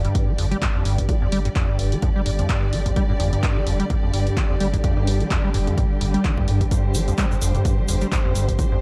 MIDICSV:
0, 0, Header, 1, 5, 480
1, 0, Start_track
1, 0, Tempo, 468750
1, 1114, Time_signature, 4, 2, 24, 8
1, 9028, End_track
2, 0, Start_track
2, 0, Title_t, "String section"
2, 0, Program_c, 0, 48
2, 0, Note_on_c, 0, 50, 83
2, 0, Note_on_c, 0, 55, 79
2, 0, Note_on_c, 0, 67, 78
2, 0, Note_on_c, 0, 74, 92
2, 6859, Note_off_c, 0, 74, 0
2, 6872, Note_on_c, 0, 72, 94
2, 9028, Note_off_c, 0, 50, 0
2, 9028, Note_off_c, 0, 55, 0
2, 9028, Note_off_c, 0, 67, 0
2, 9028, Note_off_c, 0, 72, 0
2, 9028, End_track
3, 0, Start_track
3, 0, Title_t, "Acid bass"
3, 0, Program_c, 1, 38
3, 47, Note_on_c, 1, 43, 74
3, 287, Note_on_c, 1, 55, 72
3, 302, Note_off_c, 1, 43, 0
3, 346, Note_off_c, 1, 55, 0
3, 393, Note_on_c, 1, 41, 74
3, 467, Note_off_c, 1, 41, 0
3, 526, Note_on_c, 1, 55, 98
3, 585, Note_off_c, 1, 55, 0
3, 633, Note_on_c, 1, 43, 101
3, 678, Note_off_c, 1, 43, 0
3, 768, Note_on_c, 1, 41, 72
3, 855, Note_off_c, 1, 41, 0
3, 874, Note_on_c, 1, 43, 73
3, 1114, Note_on_c, 1, 55, 79
3, 1129, Note_off_c, 1, 43, 0
3, 1188, Note_off_c, 1, 55, 0
3, 1248, Note_on_c, 1, 41, 78
3, 1306, Note_off_c, 1, 41, 0
3, 1354, Note_on_c, 1, 55, 101
3, 1427, Note_off_c, 1, 55, 0
3, 1488, Note_on_c, 1, 43, 95
3, 1523, Note_off_c, 1, 43, 0
3, 1594, Note_on_c, 1, 41, 81
3, 1705, Note_off_c, 1, 41, 0
3, 1727, Note_on_c, 1, 43, 79
3, 1968, Note_on_c, 1, 55, 76
3, 1984, Note_off_c, 1, 43, 0
3, 2026, Note_off_c, 1, 55, 0
3, 2074, Note_on_c, 1, 41, 80
3, 2148, Note_off_c, 1, 41, 0
3, 2208, Note_on_c, 1, 55, 96
3, 2266, Note_off_c, 1, 55, 0
3, 2313, Note_on_c, 1, 43, 101
3, 2358, Note_off_c, 1, 43, 0
3, 2448, Note_on_c, 1, 41, 76
3, 2536, Note_off_c, 1, 41, 0
3, 2554, Note_on_c, 1, 43, 83
3, 2794, Note_on_c, 1, 55, 74
3, 2809, Note_off_c, 1, 43, 0
3, 2868, Note_off_c, 1, 55, 0
3, 2928, Note_on_c, 1, 41, 76
3, 2986, Note_off_c, 1, 41, 0
3, 3034, Note_on_c, 1, 55, 102
3, 3108, Note_off_c, 1, 55, 0
3, 3168, Note_on_c, 1, 43, 103
3, 3203, Note_off_c, 1, 43, 0
3, 3273, Note_on_c, 1, 41, 76
3, 3384, Note_off_c, 1, 41, 0
3, 3408, Note_on_c, 1, 43, 73
3, 3648, Note_on_c, 1, 55, 76
3, 3663, Note_off_c, 1, 43, 0
3, 3706, Note_off_c, 1, 55, 0
3, 3753, Note_on_c, 1, 41, 77
3, 3828, Note_off_c, 1, 41, 0
3, 3887, Note_on_c, 1, 55, 101
3, 3946, Note_off_c, 1, 55, 0
3, 3993, Note_on_c, 1, 43, 98
3, 4038, Note_off_c, 1, 43, 0
3, 4128, Note_on_c, 1, 41, 72
3, 4215, Note_off_c, 1, 41, 0
3, 4233, Note_on_c, 1, 43, 79
3, 4473, Note_on_c, 1, 55, 82
3, 4489, Note_off_c, 1, 43, 0
3, 4547, Note_off_c, 1, 55, 0
3, 4608, Note_on_c, 1, 41, 76
3, 4666, Note_off_c, 1, 41, 0
3, 4714, Note_on_c, 1, 55, 101
3, 4788, Note_off_c, 1, 55, 0
3, 4848, Note_on_c, 1, 43, 101
3, 4883, Note_off_c, 1, 43, 0
3, 4954, Note_on_c, 1, 41, 83
3, 5065, Note_off_c, 1, 41, 0
3, 5089, Note_on_c, 1, 43, 74
3, 5328, Note_on_c, 1, 55, 75
3, 5344, Note_off_c, 1, 43, 0
3, 5386, Note_off_c, 1, 55, 0
3, 5434, Note_on_c, 1, 41, 80
3, 5508, Note_off_c, 1, 41, 0
3, 5568, Note_on_c, 1, 55, 98
3, 5626, Note_off_c, 1, 55, 0
3, 5674, Note_on_c, 1, 43, 103
3, 5718, Note_off_c, 1, 43, 0
3, 5808, Note_on_c, 1, 41, 78
3, 5895, Note_off_c, 1, 41, 0
3, 5914, Note_on_c, 1, 43, 83
3, 5988, Note_off_c, 1, 43, 0
3, 6153, Note_on_c, 1, 43, 76
3, 6198, Note_off_c, 1, 43, 0
3, 6287, Note_on_c, 1, 55, 100
3, 6393, Note_on_c, 1, 50, 80
3, 6408, Note_off_c, 1, 55, 0
3, 6467, Note_off_c, 1, 50, 0
3, 6528, Note_on_c, 1, 43, 77
3, 6634, Note_on_c, 1, 46, 75
3, 6650, Note_off_c, 1, 43, 0
3, 6678, Note_off_c, 1, 46, 0
3, 6768, Note_on_c, 1, 43, 76
3, 6803, Note_off_c, 1, 43, 0
3, 6875, Note_on_c, 1, 43, 80
3, 7114, Note_on_c, 1, 55, 77
3, 7129, Note_off_c, 1, 43, 0
3, 7188, Note_off_c, 1, 55, 0
3, 7250, Note_on_c, 1, 41, 76
3, 7307, Note_off_c, 1, 41, 0
3, 7355, Note_on_c, 1, 55, 97
3, 7428, Note_off_c, 1, 55, 0
3, 7488, Note_on_c, 1, 43, 100
3, 7523, Note_off_c, 1, 43, 0
3, 7594, Note_on_c, 1, 41, 78
3, 7705, Note_off_c, 1, 41, 0
3, 7728, Note_on_c, 1, 43, 75
3, 7968, Note_on_c, 1, 55, 74
3, 7984, Note_off_c, 1, 43, 0
3, 8026, Note_off_c, 1, 55, 0
3, 8074, Note_on_c, 1, 41, 77
3, 8148, Note_off_c, 1, 41, 0
3, 8207, Note_on_c, 1, 55, 103
3, 8266, Note_off_c, 1, 55, 0
3, 8314, Note_on_c, 1, 43, 100
3, 8358, Note_off_c, 1, 43, 0
3, 8448, Note_on_c, 1, 41, 77
3, 8535, Note_off_c, 1, 41, 0
3, 8553, Note_on_c, 1, 43, 72
3, 8793, Note_on_c, 1, 55, 84
3, 8809, Note_off_c, 1, 43, 0
3, 8867, Note_off_c, 1, 55, 0
3, 8927, Note_on_c, 1, 41, 77
3, 8986, Note_off_c, 1, 41, 0
3, 9028, End_track
4, 0, Start_track
4, 0, Title_t, "Sub bass"
4, 0, Program_c, 2, 38
4, 392, Note_on_c, 2, 31, 91
4, 564, Note_off_c, 2, 31, 0
4, 873, Note_on_c, 2, 31, 99
4, 1044, Note_off_c, 2, 31, 0
4, 1351, Note_on_c, 2, 31, 95
4, 1523, Note_off_c, 2, 31, 0
4, 1832, Note_on_c, 2, 29, 90
4, 2004, Note_off_c, 2, 29, 0
4, 2313, Note_on_c, 2, 31, 90
4, 2484, Note_off_c, 2, 31, 0
4, 2794, Note_on_c, 2, 31, 99
4, 2965, Note_off_c, 2, 31, 0
4, 3274, Note_on_c, 2, 31, 98
4, 3444, Note_off_c, 2, 31, 0
4, 3755, Note_on_c, 2, 29, 89
4, 3925, Note_off_c, 2, 29, 0
4, 4233, Note_on_c, 2, 31, 89
4, 4404, Note_off_c, 2, 31, 0
4, 4713, Note_on_c, 2, 31, 99
4, 4884, Note_off_c, 2, 31, 0
4, 5192, Note_on_c, 2, 31, 97
4, 5364, Note_off_c, 2, 31, 0
4, 5674, Note_on_c, 2, 29, 85
4, 5844, Note_off_c, 2, 29, 0
4, 6153, Note_on_c, 2, 31, 98
4, 6324, Note_off_c, 2, 31, 0
4, 6633, Note_on_c, 2, 43, 95
4, 6804, Note_off_c, 2, 43, 0
4, 7113, Note_on_c, 2, 31, 95
4, 7284, Note_off_c, 2, 31, 0
4, 7595, Note_on_c, 2, 29, 88
4, 7765, Note_off_c, 2, 29, 0
4, 8074, Note_on_c, 2, 31, 89
4, 8245, Note_off_c, 2, 31, 0
4, 8554, Note_on_c, 2, 31, 97
4, 8725, Note_off_c, 2, 31, 0
4, 9028, End_track
5, 0, Start_track
5, 0, Title_t, "Drums"
5, 48, Note_on_c, 9, 42, 52
5, 150, Note_off_c, 9, 42, 0
5, 153, Note_on_c, 9, 36, 117
5, 154, Note_on_c, 9, 42, 70
5, 256, Note_off_c, 9, 36, 0
5, 256, Note_off_c, 9, 42, 0
5, 394, Note_on_c, 9, 46, 98
5, 496, Note_off_c, 9, 46, 0
5, 528, Note_on_c, 9, 42, 54
5, 631, Note_off_c, 9, 42, 0
5, 634, Note_on_c, 9, 36, 113
5, 635, Note_on_c, 9, 42, 63
5, 638, Note_on_c, 9, 39, 119
5, 736, Note_off_c, 9, 36, 0
5, 737, Note_off_c, 9, 42, 0
5, 741, Note_off_c, 9, 39, 0
5, 874, Note_on_c, 9, 46, 100
5, 976, Note_off_c, 9, 46, 0
5, 1008, Note_on_c, 9, 36, 57
5, 1008, Note_on_c, 9, 42, 68
5, 1110, Note_off_c, 9, 36, 0
5, 1110, Note_off_c, 9, 42, 0
5, 1114, Note_on_c, 9, 36, 115
5, 1114, Note_on_c, 9, 42, 64
5, 1216, Note_off_c, 9, 36, 0
5, 1216, Note_off_c, 9, 42, 0
5, 1353, Note_on_c, 9, 46, 112
5, 1456, Note_off_c, 9, 46, 0
5, 1487, Note_on_c, 9, 42, 53
5, 1590, Note_off_c, 9, 42, 0
5, 1593, Note_on_c, 9, 42, 64
5, 1594, Note_on_c, 9, 36, 120
5, 1596, Note_on_c, 9, 39, 119
5, 1695, Note_off_c, 9, 42, 0
5, 1696, Note_off_c, 9, 36, 0
5, 1699, Note_off_c, 9, 39, 0
5, 1833, Note_on_c, 9, 46, 107
5, 1936, Note_off_c, 9, 46, 0
5, 1968, Note_on_c, 9, 42, 51
5, 2071, Note_off_c, 9, 42, 0
5, 2072, Note_on_c, 9, 42, 67
5, 2074, Note_on_c, 9, 36, 126
5, 2175, Note_off_c, 9, 42, 0
5, 2176, Note_off_c, 9, 36, 0
5, 2313, Note_on_c, 9, 46, 108
5, 2415, Note_off_c, 9, 46, 0
5, 2447, Note_on_c, 9, 42, 51
5, 2549, Note_off_c, 9, 42, 0
5, 2554, Note_on_c, 9, 36, 121
5, 2554, Note_on_c, 9, 42, 65
5, 2557, Note_on_c, 9, 39, 116
5, 2656, Note_off_c, 9, 36, 0
5, 2656, Note_off_c, 9, 42, 0
5, 2659, Note_off_c, 9, 39, 0
5, 2793, Note_on_c, 9, 46, 105
5, 2896, Note_off_c, 9, 46, 0
5, 2928, Note_on_c, 9, 36, 62
5, 2928, Note_on_c, 9, 42, 65
5, 3030, Note_off_c, 9, 36, 0
5, 3031, Note_off_c, 9, 42, 0
5, 3034, Note_on_c, 9, 36, 118
5, 3034, Note_on_c, 9, 42, 64
5, 3137, Note_off_c, 9, 36, 0
5, 3137, Note_off_c, 9, 42, 0
5, 3275, Note_on_c, 9, 46, 109
5, 3377, Note_off_c, 9, 46, 0
5, 3409, Note_on_c, 9, 42, 49
5, 3511, Note_off_c, 9, 42, 0
5, 3514, Note_on_c, 9, 36, 120
5, 3515, Note_on_c, 9, 42, 61
5, 3518, Note_on_c, 9, 39, 115
5, 3617, Note_off_c, 9, 36, 0
5, 3617, Note_off_c, 9, 42, 0
5, 3620, Note_off_c, 9, 39, 0
5, 3755, Note_on_c, 9, 46, 102
5, 3857, Note_off_c, 9, 46, 0
5, 3889, Note_on_c, 9, 42, 50
5, 3992, Note_off_c, 9, 42, 0
5, 3994, Note_on_c, 9, 36, 122
5, 3995, Note_on_c, 9, 42, 64
5, 4097, Note_off_c, 9, 36, 0
5, 4097, Note_off_c, 9, 42, 0
5, 4235, Note_on_c, 9, 46, 108
5, 4337, Note_off_c, 9, 46, 0
5, 4370, Note_on_c, 9, 42, 52
5, 4472, Note_off_c, 9, 42, 0
5, 4474, Note_on_c, 9, 36, 121
5, 4475, Note_on_c, 9, 42, 60
5, 4479, Note_on_c, 9, 39, 111
5, 4577, Note_off_c, 9, 36, 0
5, 4578, Note_off_c, 9, 42, 0
5, 4581, Note_off_c, 9, 39, 0
5, 4714, Note_on_c, 9, 46, 104
5, 4817, Note_off_c, 9, 46, 0
5, 4849, Note_on_c, 9, 36, 59
5, 4850, Note_on_c, 9, 42, 62
5, 4951, Note_off_c, 9, 36, 0
5, 4952, Note_off_c, 9, 42, 0
5, 4954, Note_on_c, 9, 36, 113
5, 4955, Note_on_c, 9, 42, 58
5, 5057, Note_off_c, 9, 36, 0
5, 5057, Note_off_c, 9, 42, 0
5, 5195, Note_on_c, 9, 46, 110
5, 5298, Note_off_c, 9, 46, 0
5, 5330, Note_on_c, 9, 42, 48
5, 5432, Note_off_c, 9, 42, 0
5, 5434, Note_on_c, 9, 36, 121
5, 5435, Note_on_c, 9, 42, 62
5, 5438, Note_on_c, 9, 39, 113
5, 5537, Note_off_c, 9, 36, 0
5, 5537, Note_off_c, 9, 42, 0
5, 5541, Note_off_c, 9, 39, 0
5, 5676, Note_on_c, 9, 46, 105
5, 5778, Note_off_c, 9, 46, 0
5, 5810, Note_on_c, 9, 42, 49
5, 5912, Note_off_c, 9, 42, 0
5, 5914, Note_on_c, 9, 36, 124
5, 5916, Note_on_c, 9, 42, 60
5, 6017, Note_off_c, 9, 36, 0
5, 6018, Note_off_c, 9, 42, 0
5, 6156, Note_on_c, 9, 46, 107
5, 6258, Note_off_c, 9, 46, 0
5, 6290, Note_on_c, 9, 42, 48
5, 6392, Note_off_c, 9, 42, 0
5, 6394, Note_on_c, 9, 36, 115
5, 6395, Note_on_c, 9, 42, 61
5, 6398, Note_on_c, 9, 39, 111
5, 6497, Note_off_c, 9, 36, 0
5, 6497, Note_off_c, 9, 42, 0
5, 6501, Note_off_c, 9, 39, 0
5, 6528, Note_on_c, 9, 36, 85
5, 6631, Note_off_c, 9, 36, 0
5, 6634, Note_on_c, 9, 46, 105
5, 6736, Note_off_c, 9, 46, 0
5, 6768, Note_on_c, 9, 36, 63
5, 6768, Note_on_c, 9, 42, 60
5, 6870, Note_off_c, 9, 36, 0
5, 6870, Note_off_c, 9, 42, 0
5, 6874, Note_on_c, 9, 36, 115
5, 6874, Note_on_c, 9, 42, 65
5, 6879, Note_on_c, 9, 82, 53
5, 6977, Note_off_c, 9, 36, 0
5, 6977, Note_off_c, 9, 42, 0
5, 6981, Note_off_c, 9, 82, 0
5, 7110, Note_on_c, 9, 82, 94
5, 7114, Note_on_c, 9, 46, 108
5, 7212, Note_off_c, 9, 82, 0
5, 7216, Note_off_c, 9, 46, 0
5, 7248, Note_on_c, 9, 42, 49
5, 7251, Note_on_c, 9, 82, 40
5, 7349, Note_off_c, 9, 82, 0
5, 7349, Note_on_c, 9, 82, 51
5, 7351, Note_off_c, 9, 42, 0
5, 7354, Note_on_c, 9, 36, 117
5, 7354, Note_on_c, 9, 42, 61
5, 7357, Note_on_c, 9, 39, 109
5, 7451, Note_off_c, 9, 82, 0
5, 7456, Note_off_c, 9, 42, 0
5, 7457, Note_off_c, 9, 36, 0
5, 7460, Note_off_c, 9, 39, 0
5, 7492, Note_on_c, 9, 82, 33
5, 7594, Note_off_c, 9, 82, 0
5, 7594, Note_on_c, 9, 46, 100
5, 7595, Note_on_c, 9, 82, 95
5, 7696, Note_off_c, 9, 46, 0
5, 7697, Note_off_c, 9, 82, 0
5, 7725, Note_on_c, 9, 82, 34
5, 7728, Note_on_c, 9, 42, 50
5, 7728, Note_on_c, 9, 45, 83
5, 7828, Note_off_c, 9, 82, 0
5, 7830, Note_off_c, 9, 42, 0
5, 7830, Note_off_c, 9, 45, 0
5, 7834, Note_on_c, 9, 42, 62
5, 7835, Note_on_c, 9, 36, 117
5, 7840, Note_on_c, 9, 82, 52
5, 7937, Note_off_c, 9, 36, 0
5, 7937, Note_off_c, 9, 42, 0
5, 7943, Note_off_c, 9, 82, 0
5, 8072, Note_on_c, 9, 82, 90
5, 8074, Note_on_c, 9, 46, 104
5, 8174, Note_off_c, 9, 82, 0
5, 8176, Note_off_c, 9, 46, 0
5, 8203, Note_on_c, 9, 82, 42
5, 8209, Note_on_c, 9, 42, 49
5, 8305, Note_off_c, 9, 82, 0
5, 8311, Note_off_c, 9, 42, 0
5, 8314, Note_on_c, 9, 36, 118
5, 8315, Note_on_c, 9, 42, 60
5, 8316, Note_on_c, 9, 82, 49
5, 8318, Note_on_c, 9, 39, 111
5, 8417, Note_off_c, 9, 36, 0
5, 8417, Note_off_c, 9, 42, 0
5, 8418, Note_off_c, 9, 82, 0
5, 8420, Note_off_c, 9, 39, 0
5, 8554, Note_on_c, 9, 46, 105
5, 8555, Note_on_c, 9, 82, 90
5, 8657, Note_off_c, 9, 46, 0
5, 8658, Note_off_c, 9, 82, 0
5, 8689, Note_on_c, 9, 36, 59
5, 8690, Note_on_c, 9, 42, 61
5, 8691, Note_on_c, 9, 82, 41
5, 8791, Note_off_c, 9, 36, 0
5, 8792, Note_off_c, 9, 42, 0
5, 8794, Note_off_c, 9, 82, 0
5, 8794, Note_on_c, 9, 36, 107
5, 8794, Note_on_c, 9, 42, 64
5, 8796, Note_on_c, 9, 82, 51
5, 8897, Note_off_c, 9, 36, 0
5, 8897, Note_off_c, 9, 42, 0
5, 8898, Note_off_c, 9, 82, 0
5, 9028, End_track
0, 0, End_of_file